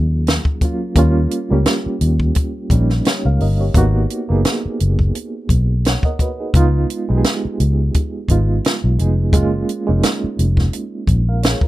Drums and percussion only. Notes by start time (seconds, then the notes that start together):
0.27 snare, closed hi-hat
0.45 kick
0.61 kick, closed hi-hat
0.96 kick, closed hi-hat
1.31 closed hi-hat
1.66 snare, closed hi-hat
2.01 closed hi-hat
2.20 kick
2.35 kick, closed hi-hat
2.70 kick, closed hi-hat
2.90 snare
3.05 snare, closed hi-hat
3.40 open hi-hat
3.74 kick, closed hi-hat
4.10 closed hi-hat
4.45 snare, closed hi-hat
4.80 closed hi-hat
4.99 kick
5.15 closed hi-hat
5.49 kick, closed hi-hat
5.85 snare, closed hi-hat
6.03 kick
6.19 kick, closed hi-hat
6.54 kick, closed hi-hat
6.90 closed hi-hat
7.24 snare, closed hi-hat
7.60 closed hi-hat
7.94 kick, closed hi-hat
8.29 kick, closed hi-hat
8.65 snare, closed hi-hat
8.99 closed hi-hat
9.33 kick, closed hi-hat
9.69 closed hi-hat
10.03 snare, closed hi-hat
10.39 closed hi-hat
10.57 kick, snare
10.73 closed hi-hat
11.07 kick, closed hi-hat
11.43 snare, closed hi-hat
11.61 kick